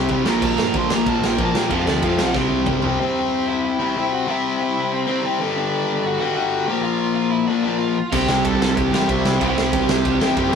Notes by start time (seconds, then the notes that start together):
Already playing: C3 G3 C4
0.08 C2 C3 G3 C4, kick, ride
0.25 A#1 A#2 F3 A#3, snare
0.41 A#1 A#2 F3 A#3 A#5, kick, crash
0.46 A#2
0.58 G2, snare
0.74 A#1 A#2 F3 A#3, kick, ride
0.78 C6
0.90 A#1 A#2 F3 A#3, snare
0.94 A#5
1.06 A#1 A#2 F3 A#3 A5, kick, ride
1.22 A#1 G5, snare
1.38 A#1 A#2 F3 A#3, kick, ride
1.43 A5
1.53 A#2 F3 A#3 G5, snare
1.71 F1 F2 C3 F3 F5, kick, ride
1.86 D2 D5, snare
2.03 F1 F2 C3 F3 F5, kick, ride
2.18 B1 F2 C3 F3, snare
2.34 C2 C3 G3 C4, kick, snare
2.49 C2
2.66 C2 C3 G3 C4, kick, mid tom
2.82 C2 C3 G3 C4, floor tom
2.99 C3 G3 C4 C5
3.48 E4 E5
3.63 E4 E5
3.79 C3 G3 C4
3.96 C3 G3 C4
4.12 F#4 F#5
4.27 C3 G3 C4 E4 E5
4.61 E4 E5
4.92 C4 C5
5.07 C3 G3 C4 C5
5.23 C3 G3 C4
5.40 G2 D3 G3
5.57 D4 D5
6.06 F#4 F#5
6.19 G2 D3 G3 F#4 F#5
6.36 G2 D3 G3
6.67 A#2 F3 A#3 G4 G5
6.82 F4 F5
7.15 F4 F5
7.30 E4 E5
7.47 A#2 F3 A#3 D4 D5
7.63 A#2 F3 A#3 D4 D5
7.78 F4 F5
8.12 C2 C3 G3 C4 G4 G5, kick, crash
8.28 C2, snare
8.45 C2 A4 A5, kick, ride
8.60 C2, snare
8.76 C2 C3 G3 C4 G4 G5, kick, ride
8.92 A1 G3 C4, snare
8.96 C3
9.07 C2 C3 G3 C4 E4 E5, kick, ride
9.25 C2, snare
9.40 C2 C3 G3 C4 G4 G5, kick, ride
9.58 C2, snare
9.73 C2 G4 G5, kick, ride
9.89 C2, snare
10.04 C2 C3 G3 C4, kick, ride
10.20 A1 C3 G3 C4, snare
10.36 F#1 C3 G3 C4, kick, ride
10.52 G2